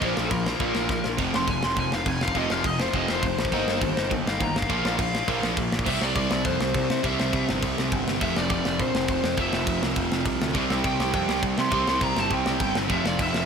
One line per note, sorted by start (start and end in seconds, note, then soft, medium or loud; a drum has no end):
0.01 0.13 A#1 loud
0.01 0.29 A#2 medium
0.01 0.30 F3 medium
0.01 0.31 A#3 loud
0.01 0.14 C5 loud
0.01 kick medium
0.01 crash medium
0.14 0.29 A#1 loud
0.14 0.22 A#4 medium
0.14 snare loud
0.24 1.08 A#4 loud
0.31 0.54 A#1 medium
0.31 0.44 A#2 medium
0.31 0.44 F3 medium
0.31 kick loud
0.31 crash medium
0.45 1.19 A#2 medium
0.45 1.21 F3 medium
0.45 1.18 A#3 medium
0.45 snare loud
0.59 0.72 A#1 loud
0.59 0.88 A#2 medium
0.59 0.89 F3 medium
0.59 0.89 A#3 medium
0.59 kick loud
0.59 crash medium
0.75 0.87 A#1 medium
0.75 snare loud
0.89 1.01 A#1 medium
0.89 1.03 A#2 medium
0.89 1.03 F3 medium
0.89 kick loud
0.89 snare medium
1.04 1.16 A#1 medium
1.04 snare medium
1.17 1.30 F1 medium
1.17 1.47 F2 medium
1.17 1.47 C3 medium
1.17 1.47 F3 medium
1.17 kick loud
1.17 crash medium
1.34 1.46 F1 medium
1.34 1.49 C6 loud
1.34 snare loud
1.48 1.59 F1 medium
1.48 1.62 F2 medium
1.48 1.62 C3 medium
1.48 1.63 G#5 loud
1.48 kick loud
1.48 crash medium
1.63 1.75 F1 medium
1.63 2.34 F2 medium
1.63 2.34 C3 medium
1.63 2.35 F3 medium
1.63 1.78 C6 loud
1.63 snare loud
1.76 1.89 F1 loud
1.76 1.90 F2 medium
1.76 1.91 C3 medium
1.76 1.92 G#5 medium
1.76 kick loud
1.76 crash medium
1.92 2.04 F1 loud
1.92 2.08 F5 medium
1.92 snare loud
2.06 2.18 F1 medium
2.06 2.20 F2 medium
2.06 2.20 C3 medium
2.06 2.22 G#5 medium
2.06 kick loud
2.06 crash medium
2.21 2.33 F1 loud
2.21 2.37 F5 loud
2.21 snare loud
2.28 kick loud
2.34 2.47 F1 medium
2.34 2.63 F2 medium
2.34 2.64 C3 medium
2.34 2.64 F3 medium
2.34 2.52 D#5 medium
2.34 kick medium
2.34 crash medium
2.50 2.62 F1 medium
2.50 2.66 F5 loud
2.50 snare loud
2.64 2.87 F1 loud
2.64 2.78 F2 medium
2.64 2.79 C3 medium
2.64 2.79 D#5 medium
2.64 kick loud
2.64 crash medium
2.78 3.53 F2 medium
2.78 3.51 C3 medium
2.78 3.51 F3 medium
2.78 2.95 C5 loud
2.78 snare loud
2.93 3.05 F1 loud
2.93 3.23 F2 medium
2.93 3.23 C3 medium
2.93 3.23 F3 medium
2.93 3.10 D#5 medium
2.93 kick loud
2.93 crash medium
3.08 3.21 F1 medium
3.08 3.24 C5 loud
3.08 snare loud
3.23 3.35 F1 medium
3.23 3.37 F2 medium
3.23 3.38 C3 medium
3.23 4.10 C5 loud
3.23 kick loud
3.23 crash medium
3.39 3.50 A1 loud
3.39 snare loud
3.45 kick medium
3.52 3.64 G1 medium
3.52 3.80 D#3 medium
3.52 3.81 A#3 medium
3.52 3.82 D#4 loud
3.52 kick medium
3.52 crash medium
3.68 3.79 G1 loud
3.68 snare loud
3.81 3.93 G1 loud
3.81 3.95 D#3 medium
3.81 3.95 A#3 medium
3.81 kick loud
3.81 crash medium
3.96 4.09 G1 loud
3.96 4.70 D#3 medium
3.96 4.70 A#3 medium
3.96 4.69 D#4 medium
3.96 snare loud
4.11 4.23 G1 loud
4.11 4.24 D#3 medium
4.11 4.24 A#3 medium
4.11 kick loud
4.11 crash medium
4.26 4.38 G1 loud
4.26 4.41 F5 loud
4.26 snare loud
4.40 4.52 G1 medium
4.40 4.54 D#3 medium
4.40 4.54 A#3 medium
4.40 4.56 A#5 medium
4.40 kick loud
4.40 crash medium
4.55 4.66 G1 medium
4.55 4.98 F5 loud
4.55 snare loud
4.62 kick loud
4.69 4.81 A#1 medium
4.69 4.98 A#2 medium
4.69 4.98 F3 medium
4.69 4.99 A#3 medium
4.69 kick loud
4.69 crash medium
4.85 4.96 A#1 medium
4.85 snare loud
4.99 5.22 A#1 medium
4.99 5.12 A#2 medium
4.99 5.13 F3 medium
4.99 5.28 F5 loud
4.99 kick loud
4.99 crash medium
5.14 5.87 A#2 medium
5.14 5.87 F3 medium
5.14 5.86 A#3 loud
5.14 snare loud
5.28 5.39 A#1 loud
5.28 5.56 A#2 medium
5.28 5.57 F3 medium
5.28 5.57 A#3 loud
5.28 kick loud
5.28 crash medium
5.43 5.54 A#1 medium
5.43 snare loud
5.57 5.69 A#1 loud
5.57 5.71 A#2 medium
5.57 5.71 F3 medium
5.57 kick loud
5.57 crash medium
5.72 5.83 A#1 medium
5.72 snare loud
5.79 kick loud
5.85 5.98 C2 loud
5.85 7.02 C3 medium
5.85 7.03 G3 medium
5.85 7.06 C4 loud
5.85 6.02 E5 loud
5.85 kick loud
5.85 crash loud
5.85 crash medium
6.01 6.13 C2 medium
6.01 6.15 D5 loud
6.01 snare loud
6.16 6.27 C2 medium
6.16 6.45 D5 loud
6.16 kick loud
6.16 crash medium
6.31 6.42 C2 loud
6.31 snare loud
6.45 6.57 F2 loud
6.45 6.74 C5 medium
6.45 kick loud
6.45 crash medium
6.60 6.71 C2 medium
6.60 snare loud
6.74 6.86 C2 loud
6.74 7.05 C5 medium
6.74 kick loud
6.74 crash medium
6.90 7.01 C3 loud
6.90 snare loud
7.03 7.15 C2 loud
7.03 8.20 C3 medium
7.03 8.20 G3 medium
7.03 10.57 C4 loud
7.03 7.45 E5 loud
7.03 kick loud
7.03 crash medium
7.20 7.31 C2 loud
7.20 snare loud
7.33 7.45 C2 medium
7.33 kick loud
7.33 crash medium
7.49 7.60 G1 medium
7.49 snare loud
7.63 7.74 C2 loud
7.63 kick loud
7.63 crash medium
7.78 7.89 C2 medium
7.78 snare loud
7.92 8.04 G1 loud
7.92 kick loud
7.92 crash medium
8.07 8.18 G1 loud
8.07 snare loud
8.20 8.33 F1 medium
8.20 9.35 F2 medium
8.20 9.37 C3 medium
8.20 9.38 F3 medium
8.20 8.37 E5 loud
8.20 kick loud
8.20 crash medium
8.36 8.48 F1 loud
8.36 8.50 D5 loud
8.36 snare loud
8.50 8.62 F1 loud
8.50 8.81 D5 loud
8.50 kick loud
8.50 crash medium
8.65 8.77 F1 loud
8.65 snare loud
8.79 8.91 A#1 loud
8.79 9.10 C5 medium
8.79 kick loud
8.79 crash medium
8.95 9.06 F1 loud
8.95 snare loud
9.08 9.20 F1 loud
9.08 9.40 C5 medium
9.08 kick loud
9.08 crash medium
9.24 9.35 F2 loud
9.24 snare loud
9.36 9.49 F1 medium
9.36 10.54 F2 medium
9.36 10.52 C3 medium
9.36 10.55 F3 medium
9.36 kick loud
9.36 crash medium
9.41 9.80 E5 medium
9.53 9.64 F1 loud
9.53 snare loud
9.67 9.78 F1 medium
9.67 kick loud
9.67 crash medium
9.82 9.94 C2 loud
9.82 snare loud
9.96 10.08 F1 loud
9.96 kick loud
9.96 crash medium
10.12 10.23 F1 loud
10.12 snare loud
10.26 10.37 C2 medium
10.26 kick loud
10.26 crash medium
10.42 10.53 D2 loud
10.42 snare loud
10.53 10.67 C2 medium
10.53 11.69 C3 medium
10.53 11.72 G3 medium
10.53 11.74 C4 medium
10.53 kick loud
10.53 crash medium
10.70 10.82 C2 loud
10.70 snare loud
10.84 10.96 C2 loud
10.84 11.14 G5 loud
10.84 kick loud
10.84 crash medium
11.00 11.11 C2 loud
11.00 snare loud
11.13 11.25 F2 loud
11.13 11.71 C3 medium
11.13 11.72 G3 medium
11.13 11.74 C4 medium
11.13 11.42 G5 loud
11.13 kick loud
11.13 crash medium
11.29 11.40 C2 loud
11.29 snare loud
11.43 11.55 C2 medium
11.43 kick loud
11.43 crash medium
11.58 11.70 C3 loud
11.58 11.86 C6 loud
11.58 snare loud
11.71 11.84 C2 loud
11.71 12.88 C3 medium
11.71 12.89 G3 medium
11.71 13.45 C4 loud
11.71 kick loud
11.71 crash medium
11.87 11.99 C2 loud
11.87 12.03 C6 loud
11.87 snare loud
12.01 12.13 C2 loud
12.01 12.18 A#5 loud
12.01 kick loud
12.01 crash medium
12.16 12.28 G1 loud
12.16 12.33 A5 medium
12.16 snare loud
12.31 12.42 C2 loud
12.31 12.89 C3 medium
12.31 12.90 G3 medium
12.31 13.45 C4 loud
12.31 12.76 G5 medium
12.31 kick loud
12.31 crash medium
12.46 12.57 C2 medium
12.46 snare loud
12.60 12.72 G1 loud
12.60 kick loud
12.60 crash medium
12.75 12.87 G1 loud
12.75 snare loud
12.88 13.01 F1 medium
12.88 13.45 F2 medium
12.88 13.45 C3 loud
12.88 13.45 F3 loud
12.88 13.06 E5 loud
12.88 kick loud
12.88 crash medium
13.04 13.16 F1 loud
13.04 13.21 D5 medium
13.04 snare loud
13.19 13.31 F1 loud
13.19 13.45 E5 medium
13.19 kick loud
13.19 crash medium
13.34 13.45 F1 medium
13.34 snare loud